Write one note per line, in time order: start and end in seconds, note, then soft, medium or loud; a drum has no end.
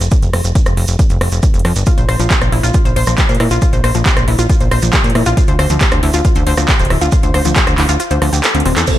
0.01 0.09 F1 medium
0.01 closed hi-hat soft
0.01 shekere medium
0.11 kick loud
0.11 closed hi-hat medium
0.11 shekere medium
0.22 0.30 F1 medium
0.22 closed hi-hat soft
0.22 shekere soft
0.33 0.41 F1 medium
0.33 cross-stick medium
0.33 open hi-hat loud
0.44 0.52 F1 medium
0.44 closed hi-hat soft
0.44 shekere medium
0.55 kick loud
0.55 closed hi-hat medium
0.55 shekere medium
0.66 0.74 F1 medium
0.66 cross-stick medium
0.66 closed hi-hat soft
0.66 shekere soft
0.77 0.85 F1 loud
0.77 open hi-hat medium
0.88 0.96 F1 medium
0.88 closed hi-hat soft
0.88 shekere medium
0.99 kick loud
0.99 closed hi-hat medium
0.99 shekere medium
1.09 1.18 F1 medium
1.09 closed hi-hat soft
1.09 shekere soft
1.21 1.29 F1 medium
1.21 cross-stick medium
1.21 open hi-hat loud
1.32 1.40 F1 medium
1.32 closed hi-hat soft
1.32 shekere medium
1.42 kick loud
1.42 closed hi-hat medium
1.42 shekere medium
1.54 1.62 F1 medium
1.54 closed hi-hat soft
1.54 shekere soft
1.59 closed hi-hat medium
1.65 1.73 F2 medium
1.65 cross-stick medium
1.65 open hi-hat medium
1.76 1.84 G1 medium
1.76 closed hi-hat soft
1.76 shekere medium
1.86 1.91 F4 medium
1.86 kick loud
1.86 closed hi-hat medium
1.86 shekere medium
1.98 2.06 A#1 medium
1.98 2.04 C5 medium
1.98 closed hi-hat soft
1.98 shekere soft
2.09 2.17 A#1 medium
2.09 2.13 C5 loud
2.09 cross-stick medium
2.09 open hi-hat loud
2.20 2.28 A#1 medium
2.20 2.22 F3 loud
2.20 closed hi-hat soft
2.20 shekere medium
2.31 2.37 G4 medium
2.31 kick loud
2.31 clap loud
2.31 closed hi-hat medium
2.31 shekere medium
2.41 2.49 A#1 medium
2.41 2.48 C5 medium
2.41 cross-stick medium
2.41 closed hi-hat soft
2.41 shekere soft
2.52 2.60 A#1 medium
2.52 2.57 E4 medium
2.52 open hi-hat medium
2.63 2.71 A#1 medium
2.63 2.68 F4 loud
2.63 closed hi-hat soft
2.63 shekere medium
2.74 2.79 F4 medium
2.74 kick loud
2.74 closed hi-hat medium
2.74 shekere medium
2.85 2.93 A#1 medium
2.85 2.92 C5 medium
2.85 closed hi-hat soft
2.85 shekere soft
2.96 3.04 A#1 medium
2.96 3.01 C5 loud
2.96 open hi-hat loud
3.06 3.15 A#1 medium
3.06 3.10 F3 loud
3.06 cross-stick medium
3.06 closed hi-hat soft
3.06 shekere medium
3.18 3.25 G4 medium
3.18 kick loud
3.18 clap loud
3.18 closed hi-hat medium
3.18 shekere medium
3.29 3.37 A#2 medium
3.29 3.36 C5 medium
3.29 closed hi-hat soft
3.29 shekere soft
3.35 closed hi-hat medium
3.40 3.48 A#2 loud
3.40 3.45 E4 medium
3.40 cross-stick medium
3.40 open hi-hat medium
3.51 3.59 A#1 medium
3.51 3.55 F4 loud
3.51 closed hi-hat soft
3.51 shekere medium
3.62 3.66 F4 medium
3.62 kick loud
3.62 closed hi-hat medium
3.62 shekere medium
3.73 3.81 A#1 medium
3.73 3.80 C5 medium
3.73 closed hi-hat soft
3.73 shekere soft
3.84 3.92 A#1 loud
3.84 3.88 C5 loud
3.84 cross-stick medium
3.84 open hi-hat loud
3.94 4.03 A#1 medium
3.94 3.97 F3 loud
3.94 closed hi-hat medium
3.94 shekere medium
4.06 4.12 G4 medium
4.06 kick loud
4.06 clap loud
4.06 closed hi-hat medium
4.06 shekere medium
4.17 4.25 A#1 medium
4.17 4.23 C5 medium
4.17 cross-stick medium
4.17 closed hi-hat soft
4.17 shekere soft
4.28 4.36 A#1 loud
4.28 4.32 E4 medium
4.28 open hi-hat medium
4.39 4.47 A#1 medium
4.39 4.43 F4 loud
4.39 closed hi-hat soft
4.39 shekere medium
4.50 4.54 F4 medium
4.50 kick loud
4.50 closed hi-hat medium
4.50 shekere medium
4.60 4.68 A#1 medium
4.60 4.67 C5 medium
4.60 closed hi-hat soft
4.60 shekere soft
4.71 4.79 A#1 medium
4.71 4.76 C5 loud
4.71 cross-stick medium
4.71 open hi-hat loud
4.82 4.90 A#1 medium
4.82 4.85 F3 medium
4.82 closed hi-hat medium
4.82 shekere medium
4.93 5.00 G4 medium
4.93 kick loud
4.93 clap loud
4.93 closed hi-hat medium
4.93 shekere medium
5.04 5.12 A#2 medium
5.04 5.11 C5 medium
5.04 closed hi-hat soft
5.04 shekere soft
5.10 closed hi-hat medium
5.15 5.23 A#2 loud
5.15 5.20 E4 medium
5.15 cross-stick medium
5.15 open hi-hat medium
5.26 5.34 A#1 medium
5.26 5.31 F4 loud
5.26 closed hi-hat soft
5.26 shekere medium
5.37 5.42 F4 medium
5.37 kick loud
5.37 closed hi-hat medium
5.37 shekere medium
5.47 5.56 D2 medium
5.47 5.55 C5 medium
5.47 closed hi-hat medium
5.47 shekere soft
5.59 5.67 D2 medium
5.59 5.64 C5 loud
5.59 cross-stick medium
5.59 open hi-hat loud
5.69 5.78 D2 medium
5.69 5.73 F3 loud
5.69 closed hi-hat medium
5.69 shekere medium
5.81 5.88 G4 medium
5.81 kick loud
5.81 clap loud
5.81 closed hi-hat medium
5.81 shekere medium
5.92 6.00 D2 medium
5.92 5.99 C5 medium
5.92 cross-stick medium
5.92 closed hi-hat medium
5.92 shekere soft
6.03 6.11 D2 medium
6.03 6.07 E4 medium
6.03 open hi-hat medium
6.14 6.22 D2 medium
6.14 6.18 F4 loud
6.14 closed hi-hat medium
6.14 shekere medium
6.25 6.29 F4 medium
6.25 kick loud
6.25 closed hi-hat medium
6.25 shekere medium
6.35 6.44 D2 medium
6.35 6.42 C5 medium
6.35 closed hi-hat medium
6.35 shekere soft
6.47 6.55 D2 loud
6.47 6.51 C5 loud
6.47 open hi-hat loud
6.57 6.65 D2 medium
6.57 6.60 F3 loud
6.57 cross-stick medium
6.57 closed hi-hat medium
6.57 shekere medium
6.68 6.75 G4 medium
6.68 kick loud
6.68 clap loud
6.68 closed hi-hat medium
6.68 shekere medium
6.79 6.87 D1 medium
6.79 6.86 C5 medium
6.79 closed hi-hat soft
6.79 shekere soft
6.85 closed hi-hat medium
6.90 6.98 D1 loud
6.90 6.95 E4 medium
6.90 cross-stick medium
6.90 open hi-hat medium
7.01 7.09 D2 medium
7.01 7.06 F4 loud
7.01 closed hi-hat soft
7.01 shekere medium
7.12 7.17 F4 medium
7.12 kick loud
7.12 closed hi-hat medium
7.12 shekere medium
7.23 7.31 D2 medium
7.23 7.30 C5 medium
7.23 closed hi-hat medium
7.23 shekere soft
7.34 7.42 D2 loud
7.34 7.39 C5 loud
7.34 cross-stick medium
7.34 open hi-hat loud
7.45 7.53 D2 medium
7.45 7.48 F3 loud
7.45 closed hi-hat medium
7.45 shekere medium
7.56 7.63 G4 medium
7.56 kick loud
7.56 clap loud
7.56 closed hi-hat medium
7.56 shekere medium
7.67 7.75 D2 medium
7.67 7.74 C5 medium
7.67 cross-stick medium
7.67 closed hi-hat medium
7.67 shekere soft
7.78 7.86 D2 loud
7.78 7.82 E4 medium
7.78 clap medium
7.78 open hi-hat medium
7.89 7.97 D2 medium
7.89 7.93 F4 loud
7.89 closed hi-hat medium
7.89 shekere medium
8.00 8.04 F4 medium
8.00 closed hi-hat medium
8.00 shekere medium
8.10 8.19 D2 medium
8.10 8.18 C5 medium
8.10 closed hi-hat medium
8.10 shekere soft
8.22 8.30 D2 loud
8.22 8.28 F3 loud
8.22 cross-stick medium
8.22 open hi-hat medium
8.33 8.41 D2 medium
8.33 8.37 G4 medium
8.33 closed hi-hat medium
8.33 shekere medium
8.44 8.48 A4 medium
8.44 clap loud
8.44 closed hi-hat medium
8.44 shekere medium
8.54 8.63 D2 medium
8.54 8.57 C4 medium
8.54 closed hi-hat soft
8.54 shekere soft
8.60 closed hi-hat medium
8.65 8.73 D1 loud
8.65 8.72 C4 loud
8.65 open hi-hat medium
8.76 8.84 E2 medium
8.76 8.83 A4 loud
8.76 clap medium
8.76 closed hi-hat medium
8.76 shekere medium
8.87 8.98 C3 medium
8.87 8.98 A3 medium
8.87 8.98 E4 medium
8.87 8.98 A4 medium
8.87 8.98 C5 medium
8.87 crash medium
8.87 impact medium
8.87 shekere medium